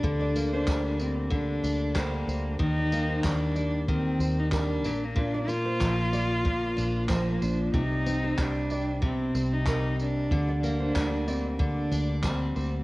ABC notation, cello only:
X:1
M:4/4
L:1/16
Q:"Swing 16ths" 1/4=93
K:Gm
V:1 name="Cello"
D3 D3 C2 D4 B,4 | E4 D4 C3 E D3 B, | D2 F8- F2 B,2 D2 | E4 D4 C3 E3 D2- |
D3 D3 C2 D4 C4 |]